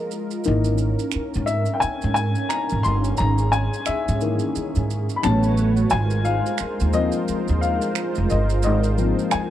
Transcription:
0.00 0.47 F3 medium
0.00 0.41 G#3 medium
0.00 0.45 A#3 medium
0.00 0.47 C4 medium
0.00 0.41 F4 medium
0.00 3.14 A#4 medium
0.00 0.41 D#5 medium
0.00 0.47 D#5 medium
0.11 maracas soft
0.31 maracas soft
0.44 0.93 G#1 loud
0.44 3.14 E3 medium
0.44 3.14 A#3 medium
0.44 5.18 C#4 medium
0.44 3.14 D#4 medium
0.44 maracas medium
0.64 maracas soft
0.78 maracas medium
0.99 maracas soft
1.12 finger snap medium
1.12 muted upright bass stroke soft
1.12 maracas medium
1.34 1.64 G#2 medium
1.34 maracas soft
1.46 1.76 E5 medium
1.46 maracas soft
1.66 maracas soft
1.74 1.81 G5 medium
1.80 2.13 G#5 medium
1.80 muted upright bass stroke soft
1.80 maracas medium
2.02 2.32 G#2 medium
2.02 maracas soft
2.14 2.50 G#5 medium
2.14 maracas soft
2.35 maracas soft
2.49 2.85 A#5 loud
2.49 finger snap medium
2.49 maracas medium
2.69 2.83 G#1 medium
2.69 maracas soft
2.83 3.14 G1 medium
2.83 3.19 C6 loud
2.83 maracas soft
3.04 maracas soft
3.17 3.66 G#1 loud
3.17 5.20 G#4 medium
3.17 3.26 A#5 loud
3.17 maracas medium
3.38 maracas soft
3.52 3.87 G#5 medium
3.52 maracas medium
3.74 maracas soft
3.86 5.21 E5 loud
3.86 finger snap medium
3.86 muted upright bass stroke soft
3.86 maracas medium
4.08 4.37 G#2 loud
4.08 maracas soft
4.21 4.69 D#3 medium
4.21 4.68 E3 medium
4.21 4.69 A#3 medium
4.21 maracas soft
4.39 maracas soft
4.55 muted upright bass stroke soft
4.55 maracas medium
4.75 5.05 G#2 medium
4.75 maracas soft
4.90 maracas soft
5.09 maracas soft
5.16 5.22 B5 medium
5.22 5.83 A1 loud
5.22 5.87 F#3 medium
5.22 5.90 A3 medium
5.22 5.88 B3 medium
5.22 5.88 C#4 medium
5.22 5.90 F#4 medium
5.22 5.90 B4 medium
5.22 5.90 C#5 medium
5.22 5.93 A5 loud
5.22 finger snap medium
5.22 maracas medium
5.43 maracas soft
5.57 maracas soft
5.77 maracas soft
5.90 6.39 G#1 medium
5.90 9.50 G#3 medium
5.90 9.50 F4 medium
5.90 9.50 A#4 medium
5.90 9.50 C5 medium
5.90 6.26 G#5 loud
5.90 maracas medium
6.10 maracas soft
6.25 6.95 F5 loud
6.25 maracas medium
6.46 maracas soft
6.58 finger snap medium
6.58 muted upright bass stroke soft
6.58 maracas medium
6.80 7.10 D#2 medium
6.80 maracas soft
6.93 8.96 F3 medium
6.93 8.97 A#3 medium
6.93 8.98 C4 medium
6.93 7.58 D#5 loud
6.93 maracas medium
7.12 maracas soft
7.28 muted upright bass stroke soft
7.28 maracas medium
7.48 7.78 D#2 medium
7.48 maracas soft
7.61 8.31 F5 medium
7.61 maracas soft
7.82 maracas soft
7.95 finger snap medium
7.95 maracas medium
8.15 8.29 F1 medium
8.15 maracas soft
8.30 8.66 G1 medium
8.30 8.62 D#5 medium
8.30 maracas soft
8.50 maracas soft
8.63 9.12 G#1 loud
8.63 9.28 D#5 medium
8.63 maracas medium
8.84 maracas soft
8.98 9.50 F3 medium
8.98 9.50 A#3 medium
8.98 9.50 C4 medium
8.98 maracas soft
9.19 maracas soft
9.31 9.50 G#5 medium
9.31 finger snap medium
9.31 muted upright bass stroke soft
9.31 maracas medium

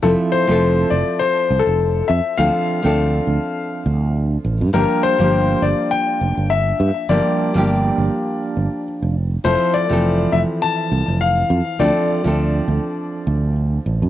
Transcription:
0.03 0.13 F1 loud
0.03 0.45 F3 medium
0.03 0.45 A3 medium
0.03 0.45 C4 medium
0.03 0.46 E4 medium
0.03 0.10 A4 medium
0.03 0.46 A4 medium
0.32 0.93 C5 medium
0.48 0.84 F1 medium
0.48 2.35 F3 medium
0.48 2.35 A3 medium
0.48 2.36 C4 medium
0.48 2.36 E4 medium
0.48 2.37 A4 medium
0.90 1.02 F1 medium
0.90 1.21 D5 medium
1.20 1.61 C5 loud
1.51 1.61 C2 medium
1.60 2.06 A4 medium
1.67 2.01 F1 loud
2.08 2.19 F2 loud
2.08 2.36 E5 medium
2.37 2.49 D2 loud
2.37 2.80 F3 medium
2.37 2.80 A3 medium
2.37 2.81 C4 medium
2.37 2.81 D4 medium
2.37 2.81 A4 medium
2.37 4.11 F5 loud
2.83 3.19 D2 medium
2.83 4.70 F3 medium
2.83 4.70 A3 medium
2.83 4.71 C4 medium
2.83 4.71 D4 medium
2.83 4.72 A4 medium
3.27 3.37 D2 medium
3.86 4.36 D2 loud
4.45 4.63 A1 loud
4.61 4.69 G2 loud
4.73 4.84 G1 loud
4.73 5.16 F3 medium
4.73 5.16 G3 medium
4.73 5.16 A#3 medium
4.73 5.16 D4 medium
4.73 5.16 G4 medium
4.73 5.01 A#4 loud
5.03 5.64 C5 loud
5.19 5.54 G1 medium
5.19 7.06 F3 medium
5.19 7.06 G3 medium
5.19 7.06 A#3 medium
5.19 7.07 D4 medium
5.19 7.07 G4 medium
5.62 5.72 G1 medium
5.62 5.90 D5 medium
5.91 6.46 G5 loud
6.21 6.31 F1 medium
6.37 6.72 G1 medium
6.50 7.11 E5 loud
6.80 6.90 G2 loud
7.09 7.19 G1 loud
7.09 7.51 F3 medium
7.09 7.51 G3 medium
7.09 7.51 A#3 medium
7.09 7.52 D4 medium
7.09 7.52 G4 loud
7.09 8.82 D5 medium
7.54 7.89 G1 medium
7.54 9.13 F3 medium
7.54 9.14 G3 medium
7.54 9.14 A#3 medium
7.54 9.14 D4 medium
7.54 9.15 G4 medium
7.98 8.08 G1 medium
8.57 8.67 G1 medium
9.02 9.36 F1 medium
9.44 9.55 F1 loud
9.44 9.86 F3 medium
9.44 9.86 A3 medium
9.44 9.87 C4 medium
9.44 9.87 E4 medium
9.44 9.87 A4 medium
9.44 9.75 C5 medium
9.74 10.34 D5 loud
9.89 10.25 F1 medium
9.89 11.78 E3 medium
9.89 11.76 F3 medium
9.89 11.77 A3 medium
9.89 11.77 C4 medium
9.89 11.78 A4 medium
10.32 10.43 F1 medium
10.32 10.39 E5 medium
10.62 11.17 A5 loud
10.92 11.02 C2 loud
11.08 11.42 F1 loud
11.21 11.82 F5 loud
11.50 11.60 F2 loud
11.79 11.90 D2 loud
11.79 12.22 F3 medium
11.79 12.22 A3 medium
11.79 12.22 C4 medium
11.79 12.22 D4 medium
11.79 12.22 A4 medium
11.79 13.52 D5 medium
12.24 12.60 D2 medium
12.24 14.09 F3 medium
12.24 14.09 A3 medium
12.24 14.09 C4 medium
12.24 14.09 D4 medium
12.24 14.09 A4 medium
12.68 12.78 D2 medium
13.27 13.78 D2 loud
13.86 14.04 A1 loud
14.02 14.09 G2 loud

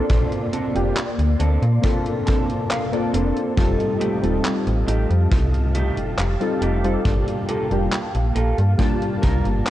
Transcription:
0.00 3.54 A#3 medium
0.00 0.36 C4 medium
0.00 0.36 D4 medium
0.00 0.36 A4 loud
0.00 3.53 D5 medium
0.00 9.70 A5 medium
0.00 3.53 C6 loud
0.08 0.28 A#1 loud
0.08 0.70 A#3 medium
0.08 0.70 C4 medium
0.08 0.70 D4 medium
0.08 0.70 F4 medium
0.08 0.70 A4 medium
0.08 kick loud
0.08 closed hi-hat medium
0.32 closed hi-hat soft
0.53 0.76 C4 medium
0.53 0.76 D4 medium
0.53 0.76 A4 medium
0.53 closed hi-hat medium
0.74 0.93 F1 medium
0.74 0.98 A#3 medium
0.74 0.99 C4 medium
0.74 0.99 D4 medium
0.74 0.99 F4 medium
0.74 0.99 G4 medium
0.74 closed hi-hat soft
0.96 clap loud
0.96 closed hi-hat medium
1.19 1.36 D2 medium
1.19 closed hi-hat soft
1.40 1.58 D2 medium
1.40 1.62 C4 medium
1.40 1.63 D4 medium
1.40 1.63 A4 medium
1.40 closed hi-hat medium
1.62 1.79 A#2 medium
1.62 closed hi-hat soft
1.81 2.87 A#3 loud
1.81 2.87 C4 medium
1.81 2.87 D4 medium
1.81 2.88 F4 medium
1.81 2.88 A4 loud
1.81 kick loud
1.81 closed hi-hat medium
2.06 closed hi-hat soft
2.27 2.49 C4 medium
2.27 2.50 D4 medium
2.27 2.50 A4 loud
2.27 2.67 A5 medium
2.27 kick loud
2.27 closed hi-hat medium
2.50 closed hi-hat soft
2.71 2.92 F5 medium
2.71 clap loud
2.71 closed hi-hat medium
2.92 3.52 A#3 medium
2.92 3.52 C4 medium
2.92 3.52 D4 medium
2.92 3.53 F4 medium
2.92 3.53 A4 loud
2.92 3.13 D5 medium
2.92 closed hi-hat soft
3.13 3.32 F1 loud
3.13 3.36 C4 medium
3.13 3.36 D4 medium
3.13 3.37 A4 medium
3.13 3.54 C5 medium
3.13 closed hi-hat medium
3.37 closed hi-hat soft
3.56 3.76 F1 medium
3.56 4.17 G3 medium
3.56 4.18 C4 medium
3.56 4.18 D#4 medium
3.56 4.18 F4 medium
3.56 9.70 G4 medium
3.56 4.18 A4 loud
3.56 7.02 D#5 medium
3.56 9.70 F5 medium
3.56 kick loud
3.56 closed hi-hat medium
3.80 closed hi-hat soft
4.00 4.23 A3 medium
4.00 4.24 D#4 medium
4.00 4.24 G4 medium
4.00 closed hi-hat medium
4.21 4.40 D#1 medium
4.21 6.34 G3 medium
4.21 6.35 C4 medium
4.21 6.35 D#4 medium
4.21 6.36 F4 medium
4.21 6.36 A4 medium
4.21 closed hi-hat soft
4.45 clap loud
4.45 closed hi-hat medium
4.67 4.84 A1 medium
4.67 closed hi-hat soft
4.87 5.06 A1 medium
4.87 5.10 A3 medium
4.87 5.10 D#4 medium
4.87 5.11 G4 medium
4.87 closed hi-hat medium
5.10 5.27 F2 medium
5.10 closed hi-hat soft
5.32 5.91 C2 loud
5.32 kick loud
5.32 closed hi-hat medium
5.54 closed hi-hat soft
5.75 5.97 A3 medium
5.75 5.98 D#4 medium
5.75 5.98 G4 medium
5.75 closed hi-hat medium
5.97 6.14 F1 soft
5.97 closed hi-hat soft
6.18 6.37 F1 medium
6.18 clap loud
6.18 closed hi-hat medium
6.40 6.79 G3 medium
6.40 6.79 C4 medium
6.40 6.79 D#4 medium
6.40 6.79 F4 medium
6.40 6.79 A4 medium
6.40 closed hi-hat soft
6.62 6.97 F1 loud
6.62 6.84 A3 medium
6.62 6.85 D#4 medium
6.62 6.85 G4 medium
6.62 closed hi-hat medium
6.83 7.00 G3 medium
6.83 7.00 C4 medium
6.83 7.00 D#4 medium
6.83 7.00 F4 medium
6.83 7.00 A4 loud
6.83 closed hi-hat soft
7.04 7.24 G1 loud
7.04 7.65 G3 medium
7.04 7.66 A#3 medium
7.04 9.70 A#3 medium
7.04 7.66 D4 medium
7.04 7.66 F4 medium
7.04 7.66 A4 medium
7.04 kick loud
7.04 closed hi-hat medium
7.28 closed hi-hat soft
7.49 7.71 A#3 medium
7.49 7.72 F4 medium
7.49 7.72 A4 medium
7.49 closed hi-hat medium
7.71 7.88 F1 medium
7.71 7.94 G3 medium
7.71 7.95 A#3 medium
7.71 7.95 D4 medium
7.71 7.95 F4 medium
7.71 7.95 G4 medium
7.71 closed hi-hat soft
7.92 clap loud
7.92 closed hi-hat medium
8.15 8.32 A#1 medium
8.15 closed hi-hat soft
8.35 8.54 A#1 medium
8.35 8.58 A#3 medium
8.35 8.58 F4 medium
8.35 8.59 A4 medium
8.35 closed hi-hat medium
8.58 8.75 G2 medium
8.58 closed hi-hat soft
8.77 9.70 G3 medium
8.77 9.70 A#3 medium
8.77 9.70 D4 medium
8.77 9.70 F4 medium
8.77 9.70 A5 loud
8.77 kick loud
8.77 closed hi-hat medium
9.02 closed hi-hat soft
9.22 9.41 C2 loud
9.22 9.45 A#3 medium
9.22 9.45 F4 medium
9.22 9.45 A#4 medium
9.22 kick medium
9.22 closed hi-hat medium
9.45 9.62 G1 medium
9.45 closed hi-hat soft
9.66 clap loud
9.66 closed hi-hat medium

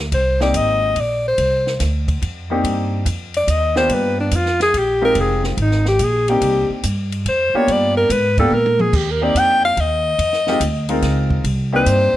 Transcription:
0.00 0.10 D2 medium
0.12 0.53 C2 medium
0.12 0.39 C5 medium
0.12 kick soft
0.12 ride medium
0.40 0.93 A#3 medium
0.40 0.93 C4 medium
0.40 0.94 D#4 medium
0.40 0.94 G4 medium
0.40 0.58 D5 medium
0.40 snare soft
0.54 0.95 G#1 medium
0.54 1.02 D#5 loud
0.54 kick soft
0.54 hi-hat pedal medium
0.54 ride medium
0.96 1.36 A#1 medium
0.96 kick soft
0.96 ride medium
1.01 1.27 D5 medium
1.28 1.78 C5 loud
1.38 1.79 C2 medium
1.38 kick soft
1.38 ride medium
1.67 snare soft
1.80 2.21 D2 medium
1.80 kick soft
1.80 snare soft
1.80 hi-hat pedal medium
1.80 ride medium
2.08 kick medium
2.08 ride medium
2.22 2.62 F2 medium
2.22 kick soft
2.22 ride medium
2.50 3.03 A#3 medium
2.50 3.03 C4 medium
2.50 3.03 D4 medium
2.50 3.04 D#4 medium
2.50 3.04 G4 medium
2.64 3.04 G2 medium
2.64 kick soft
2.64 ride medium
3.05 3.46 F2 medium
3.05 kick soft
3.05 hi-hat pedal medium
3.05 ride medium
3.34 3.52 D5 loud
3.34 ride soft
3.47 3.88 D#2 medium
3.47 3.77 D#5 loud
3.47 kick soft
3.47 hi-hat pedal medium
3.47 ride medium
3.76 4.29 A#3 medium
3.76 4.29 B3 medium
3.76 4.29 D4 medium
3.76 4.29 F4 medium
3.76 4.29 G4 medium
3.76 3.95 C5 medium
3.76 snare medium
3.89 4.30 G2 medium
3.89 kick soft
3.89 ride medium
3.94 4.20 B4 medium
4.20 4.38 D4 medium
4.31 4.72 F2 medium
4.31 kick soft
4.31 hi-hat pedal medium
4.31 ride medium
4.36 4.62 F4 medium
4.46 snare soft
4.60 4.80 G#4 loud
4.60 snare soft
4.60 ride medium
4.74 5.14 A#1 medium
4.74 kick soft
4.74 ride medium
4.78 5.04 G4 medium
5.01 5.54 G#3 medium
5.01 5.54 C4 medium
5.01 5.55 D#4 medium
5.01 5.55 F4 medium
5.01 5.55 G4 medium
5.01 5.22 A#4 loud
5.15 5.56 F1 medium
5.15 kick soft
5.15 ride medium
5.21 5.46 G#4 medium
5.44 5.62 C4 medium
5.44 snare soft
5.57 5.98 G#1 medium
5.57 kick soft
5.57 ride medium
5.62 5.88 D#4 medium
5.71 snare soft
5.86 6.05 G4 loud
5.86 snare soft
5.99 6.40 A#1 medium
5.99 kick soft
5.99 hi-hat pedal medium
5.99 ride medium
6.04 6.31 G#4 loud
6.28 6.81 A#3 medium
6.28 6.81 C4 medium
6.28 6.81 D4 medium
6.28 6.81 D#4 medium
6.28 6.70 G4 loud
6.28 6.81 G4 medium
6.28 ride medium
6.41 6.67 C2 medium
6.41 kick soft
6.41 ride medium
6.70 muted upright bass stroke soft
6.83 7.24 G2 medium
6.83 kick soft
6.83 hi-hat pedal medium
6.83 ride medium
7.12 ride medium
7.25 7.52 F2 medium
7.25 7.58 C5 medium
7.25 kick soft
7.25 ride medium
7.54 8.07 A#3 medium
7.54 8.07 B3 medium
7.54 8.07 D4 medium
7.54 8.07 F4 medium
7.54 8.07 G4 medium
7.54 7.74 C#5 loud
7.54 muted upright bass stroke soft
7.68 8.08 G2 medium
7.68 kick soft
7.68 ride medium
7.72 7.97 D5 loud
7.97 8.13 A#4 loud
8.10 8.50 G#2 medium
8.10 8.38 B4 loud
8.10 kick soft
8.10 hi-hat pedal medium
8.10 ride medium
8.38 8.50 A#3 medium
8.38 8.50 B3 medium
8.38 8.50 D4 medium
8.38 8.50 F4 medium
8.38 8.51 G4 medium
8.38 8.56 A4 loud
8.38 kick medium
8.38 ride soft
8.50 8.91 A#2 medium
8.50 8.83 A#4 loud
8.50 high tom medium
8.66 high tom medium
8.79 8.98 G#4 medium
8.79 mid tom medium
8.93 9.33 D#2 medium
8.93 9.13 G4 medium
8.93 kick medium
8.93 crash medium
9.12 9.25 A#4 medium
9.21 9.74 A#3 medium
9.21 9.74 C4 medium
9.21 9.74 D4 medium
9.21 9.74 D#4 medium
9.21 9.74 G4 medium
9.21 9.40 D5 loud
9.35 9.75 F2 medium
9.35 kick soft
9.35 hi-hat pedal medium
9.35 ride medium
9.39 9.65 G5 loud
9.65 9.82 F5 loud
9.77 10.17 D#2 medium
9.77 11.04 D#5 loud
9.77 kick soft
9.77 ride medium
10.18 10.59 F2 medium
10.18 kick soft
10.18 ride medium
10.33 snare soft
10.47 10.59 G#3 medium
10.47 10.59 C4 medium
10.47 10.59 D#4 medium
10.47 10.60 F4 medium
10.47 10.60 G4 medium
10.47 snare soft
10.60 11.01 D2 medium
10.60 kick soft
10.60 hi-hat pedal medium
10.60 ride medium
10.89 11.41 G#3 medium
10.89 11.41 C4 medium
10.89 11.41 D#4 medium
10.89 11.42 F4 medium
10.89 11.42 A#4 medium
10.89 ride medium
11.02 11.43 C#2 medium
11.02 kick soft
11.02 snare soft
11.02 ride medium
11.30 kick medium
11.44 11.85 C2 medium
11.44 kick soft
11.44 ride medium
11.72 12.17 A#3 medium
11.72 12.17 C4 medium
11.72 12.17 D4 medium
11.72 12.17 D#4 medium
11.72 12.17 G4 medium
11.72 12.17 C5 loud
11.86 12.12 G2 medium
11.86 kick soft
11.86 hi-hat pedal medium
11.86 ride medium
12.13 muted upright bass stroke soft

